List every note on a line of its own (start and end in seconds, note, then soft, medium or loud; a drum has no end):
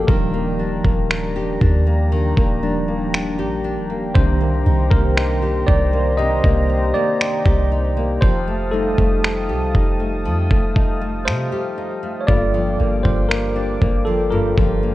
0.00 0.18 G2 medium
0.00 0.09 F3 soft
0.00 0.10 A#3 medium
0.00 0.33 A#3 medium
0.00 0.59 D4 medium
0.00 0.10 F#4 medium
0.00 0.11 G4 medium
0.00 0.11 A4 medium
0.00 0.07 A#4 medium
0.07 0.82 D#1 loud
0.07 2.11 D#3 medium
0.07 1.57 F3 medium
0.07 1.57 G3 soft
0.07 4.11 D4 medium
0.07 1.58 D4 medium
0.07 12.25 G4 medium
0.07 1.06 A#4 medium
0.07 4.11 A#5 medium
0.07 kick loud
0.34 0.84 A#3 medium
0.59 1.09 D4 medium
0.85 1.58 D#1 medium
0.85 1.86 A#3 medium
0.85 kick medium
1.10 1.60 D4 medium
1.10 finger snap loud
1.36 3.38 G4 medium
1.61 2.34 D#2 loud
1.61 2.62 D4 medium
1.61 kick medium
1.87 2.37 A#3 medium
2.12 5.62 D#3 medium
2.37 3.41 D#1 medium
2.37 2.88 A#3 medium
2.37 kick medium
2.63 3.10 F3 soft
2.63 3.10 G3 soft
2.63 3.12 D4 medium
2.63 3.10 D4 medium
2.88 3.89 A#3 medium
3.14 3.63 D4 medium
3.14 finger snap loud
3.39 3.79 A#1 medium
3.39 5.42 G4 medium
3.64 4.25 D4 medium
3.77 4.13 D#1 loud
3.90 4.40 A#3 medium
4.14 4.64 C2 loud
4.14 6.17 C3 medium
4.14 5.64 D#3 medium
4.14 5.64 A#3 soft
4.14 5.64 D4 medium
4.14 4.93 C5 loud
4.14 8.18 C5 medium
4.14 8.18 A#5 medium
4.14 kick loud
4.41 4.90 A#3 medium
4.66 4.90 C2 loud
4.66 5.16 D#4 medium
4.91 5.65 C2 medium
4.91 5.92 A#3 medium
4.91 5.70 A#4 medium
4.91 kick medium
5.17 5.67 D#4 medium
5.17 finger snap loud
5.42 7.45 G4 medium
5.67 6.41 C2 loud
5.67 6.69 D#4 medium
5.67 6.14 D5 medium
5.67 kick medium
5.93 6.43 A#3 medium
6.17 8.32 C3 medium
6.17 6.90 D#5 loud
6.44 6.93 C2 medium
6.44 6.94 A#3 medium
6.44 kick medium
6.70 7.20 D#4 medium
6.94 7.95 A#3 medium
6.94 8.25 D5 medium
7.20 7.71 D#4 medium
7.20 finger snap loud
7.45 8.19 C2 medium
7.45 8.50 G4 medium
7.45 kick medium
7.71 8.50 D#4 medium
7.97 8.32 A#3 medium
8.21 8.95 F1 loud
8.21 10.25 F3 medium
8.21 8.74 C5 loud
8.21 14.95 F5 medium
8.21 12.25 A5 medium
8.21 12.25 D#6 medium
8.21 kick loud
8.47 8.97 A3 medium
8.71 12.25 G3 medium
8.71 12.25 A3 soft
8.71 9.22 D#4 medium
8.71 12.25 D#4 medium
8.71 11.34 A4 medium
8.98 9.51 F1 loud
8.98 9.99 A3 medium
8.98 kick medium
9.24 9.73 D#4 medium
9.24 finger snap loud
9.49 9.73 C2 loud
9.49 11.52 G4 medium
9.74 10.27 F1 loud
9.74 10.75 D#4 medium
9.74 kick medium
10.00 10.50 A3 medium
10.25 10.50 F2 medium
10.25 12.54 F3 medium
10.51 11.29 F1 loud
10.51 11.00 A3 medium
10.51 kick medium
10.76 11.26 D#4 medium
10.76 kick medium
11.02 12.02 A3 medium
11.25 11.51 C3 loud
11.25 11.77 D#4 medium
11.25 12.24 C5 medium
11.25 finger snap loud
11.52 12.57 G4 medium
11.78 12.39 D#4 medium
12.03 12.39 A3 medium
12.21 12.28 C#5 medium
12.27 12.78 G1 loud
12.27 14.31 G2 medium
12.27 13.77 A#3 soft
12.27 13.78 F4 medium
12.27 14.95 G4 medium
12.27 13.77 A4 medium
12.27 13.07 D5 loud
12.27 14.95 G5 medium
12.27 14.95 D6 medium
12.27 kick loud
12.54 13.04 F3 medium
12.80 13.04 G1 loud
12.80 13.30 A#3 medium
13.03 13.78 G1 loud
13.03 14.05 F3 medium
13.03 13.30 C5 medium
13.03 kick medium
13.29 13.81 A#3 medium
13.29 14.02 A#4 medium
13.29 finger snap loud
13.56 14.95 D4 medium
13.81 14.55 G1 loud
13.81 14.83 A#3 medium
13.81 kick medium
14.05 14.56 F3 medium
14.05 14.30 A4 medium
14.30 14.95 G2 medium
14.30 14.79 A#3 soft
14.30 14.79 F4 medium
14.30 14.79 A4 soft
14.30 14.95 A#4 medium
14.57 14.95 G1 medium
14.57 14.95 F3 medium
14.57 kick medium
14.83 14.95 A#3 medium